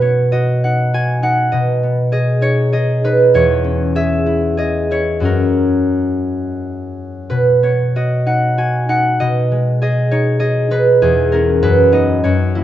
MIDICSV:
0, 0, Header, 1, 2, 480
1, 0, Start_track
1, 0, Key_signature, 5, "major"
1, 0, Tempo, 606673
1, 1214, Time_signature, 3, 2, 24, 8
1, 3133, Tempo, 647948
1, 4093, Tempo, 673401
1, 6013, Tempo, 626305
1, 7453, Tempo, 597610
1, 8893, Tempo, 623701
1, 9676, End_track
2, 0, Start_track
2, 0, Title_t, "Harp"
2, 0, Program_c, 0, 46
2, 0, Note_on_c, 0, 47, 45
2, 0, Note_on_c, 0, 66, 43
2, 0, Note_on_c, 0, 71, 59
2, 8, Note_on_c, 0, 59, 36
2, 14, Note_on_c, 0, 73, 49
2, 248, Note_off_c, 0, 66, 0
2, 253, Note_on_c, 0, 75, 61
2, 257, Note_on_c, 0, 66, 39
2, 432, Note_off_c, 0, 73, 0
2, 506, Note_on_c, 0, 78, 57
2, 511, Note_on_c, 0, 63, 35
2, 732, Note_off_c, 0, 66, 0
2, 741, Note_on_c, 0, 66, 41
2, 746, Note_on_c, 0, 80, 68
2, 961, Note_off_c, 0, 63, 0
2, 963, Note_off_c, 0, 78, 0
2, 969, Note_on_c, 0, 63, 41
2, 974, Note_on_c, 0, 78, 67
2, 1144, Note_off_c, 0, 80, 0
2, 1192, Note_off_c, 0, 75, 0
2, 1198, Note_off_c, 0, 47, 0
2, 1202, Note_on_c, 0, 75, 64
2, 1208, Note_on_c, 0, 47, 46
2, 1228, Note_off_c, 0, 78, 0
2, 1230, Note_off_c, 0, 66, 0
2, 1439, Note_off_c, 0, 59, 0
2, 1449, Note_on_c, 0, 59, 33
2, 1670, Note_off_c, 0, 75, 0
2, 1676, Note_on_c, 0, 68, 46
2, 1682, Note_on_c, 0, 75, 66
2, 1902, Note_off_c, 0, 63, 0
2, 1909, Note_on_c, 0, 63, 41
2, 1915, Note_on_c, 0, 73, 63
2, 2149, Note_off_c, 0, 68, 0
2, 2150, Note_off_c, 0, 75, 0
2, 2156, Note_on_c, 0, 68, 46
2, 2161, Note_on_c, 0, 75, 74
2, 2333, Note_off_c, 0, 73, 0
2, 2398, Note_off_c, 0, 71, 0
2, 2399, Note_off_c, 0, 63, 0
2, 2406, Note_on_c, 0, 63, 44
2, 2410, Note_on_c, 0, 71, 71
2, 2643, Note_on_c, 0, 40, 54
2, 2649, Note_on_c, 0, 73, 74
2, 2668, Note_off_c, 0, 47, 0
2, 2670, Note_off_c, 0, 71, 0
2, 2670, Note_off_c, 0, 75, 0
2, 2671, Note_off_c, 0, 63, 0
2, 2672, Note_off_c, 0, 59, 0
2, 2882, Note_on_c, 0, 61, 40
2, 3119, Note_off_c, 0, 68, 0
2, 3129, Note_on_c, 0, 68, 48
2, 3133, Note_on_c, 0, 76, 79
2, 3358, Note_on_c, 0, 64, 43
2, 3581, Note_off_c, 0, 68, 0
2, 3587, Note_on_c, 0, 68, 46
2, 3596, Note_on_c, 0, 75, 70
2, 3828, Note_off_c, 0, 64, 0
2, 3831, Note_off_c, 0, 73, 0
2, 3836, Note_on_c, 0, 64, 47
2, 3841, Note_on_c, 0, 73, 71
2, 4013, Note_off_c, 0, 75, 0
2, 4053, Note_on_c, 0, 42, 50
2, 4055, Note_off_c, 0, 61, 0
2, 4064, Note_on_c, 0, 61, 35
2, 4067, Note_off_c, 0, 61, 0
2, 4070, Note_on_c, 0, 61, 39
2, 4078, Note_on_c, 0, 66, 38
2, 4087, Note_on_c, 0, 70, 61
2, 4104, Note_off_c, 0, 68, 0
2, 4107, Note_off_c, 0, 64, 0
2, 4109, Note_off_c, 0, 40, 0
2, 4112, Note_off_c, 0, 76, 0
2, 5548, Note_on_c, 0, 71, 63
2, 5549, Note_off_c, 0, 42, 0
2, 5553, Note_on_c, 0, 47, 50
2, 5557, Note_off_c, 0, 61, 0
2, 5564, Note_off_c, 0, 73, 0
2, 5566, Note_off_c, 0, 70, 0
2, 5784, Note_on_c, 0, 59, 34
2, 5788, Note_on_c, 0, 73, 56
2, 6013, Note_off_c, 0, 66, 0
2, 6020, Note_on_c, 0, 66, 42
2, 6023, Note_on_c, 0, 75, 66
2, 6186, Note_off_c, 0, 73, 0
2, 6253, Note_on_c, 0, 63, 40
2, 6256, Note_on_c, 0, 78, 63
2, 6486, Note_off_c, 0, 66, 0
2, 6495, Note_on_c, 0, 66, 46
2, 6498, Note_on_c, 0, 80, 71
2, 6724, Note_off_c, 0, 78, 0
2, 6726, Note_off_c, 0, 63, 0
2, 6733, Note_on_c, 0, 63, 44
2, 6736, Note_on_c, 0, 78, 75
2, 6906, Note_off_c, 0, 80, 0
2, 6963, Note_off_c, 0, 75, 0
2, 6968, Note_off_c, 0, 47, 0
2, 6972, Note_on_c, 0, 75, 72
2, 6977, Note_on_c, 0, 47, 51
2, 6993, Note_off_c, 0, 78, 0
2, 6994, Note_off_c, 0, 66, 0
2, 7214, Note_on_c, 0, 56, 41
2, 7439, Note_off_c, 0, 75, 0
2, 7444, Note_on_c, 0, 68, 48
2, 7451, Note_on_c, 0, 75, 81
2, 7677, Note_off_c, 0, 63, 0
2, 7682, Note_on_c, 0, 73, 67
2, 7687, Note_on_c, 0, 63, 45
2, 7900, Note_off_c, 0, 68, 0
2, 7900, Note_off_c, 0, 75, 0
2, 7908, Note_on_c, 0, 68, 49
2, 7912, Note_on_c, 0, 75, 78
2, 8095, Note_off_c, 0, 73, 0
2, 8151, Note_off_c, 0, 63, 0
2, 8152, Note_off_c, 0, 71, 0
2, 8159, Note_on_c, 0, 63, 45
2, 8163, Note_on_c, 0, 71, 71
2, 8399, Note_off_c, 0, 68, 0
2, 8409, Note_on_c, 0, 40, 55
2, 8411, Note_on_c, 0, 68, 71
2, 8424, Note_off_c, 0, 75, 0
2, 8428, Note_off_c, 0, 63, 0
2, 8429, Note_off_c, 0, 71, 0
2, 8434, Note_off_c, 0, 47, 0
2, 8437, Note_off_c, 0, 59, 0
2, 8651, Note_on_c, 0, 70, 64
2, 8657, Note_on_c, 0, 61, 44
2, 8665, Note_on_c, 0, 64, 42
2, 8896, Note_on_c, 0, 42, 60
2, 8897, Note_on_c, 0, 71, 75
2, 8908, Note_off_c, 0, 68, 0
2, 8909, Note_off_c, 0, 40, 0
2, 8910, Note_off_c, 0, 56, 0
2, 8914, Note_off_c, 0, 61, 0
2, 8916, Note_off_c, 0, 64, 0
2, 9055, Note_off_c, 0, 70, 0
2, 9124, Note_on_c, 0, 59, 45
2, 9127, Note_on_c, 0, 63, 45
2, 9130, Note_on_c, 0, 75, 69
2, 9363, Note_off_c, 0, 42, 0
2, 9367, Note_on_c, 0, 73, 71
2, 9372, Note_on_c, 0, 42, 54
2, 9385, Note_off_c, 0, 59, 0
2, 9387, Note_off_c, 0, 75, 0
2, 9388, Note_off_c, 0, 63, 0
2, 9389, Note_off_c, 0, 71, 0
2, 9609, Note_on_c, 0, 58, 41
2, 9609, Note_on_c, 0, 64, 45
2, 9676, Note_off_c, 0, 42, 0
2, 9676, Note_off_c, 0, 58, 0
2, 9676, Note_off_c, 0, 64, 0
2, 9676, Note_off_c, 0, 73, 0
2, 9676, End_track
0, 0, End_of_file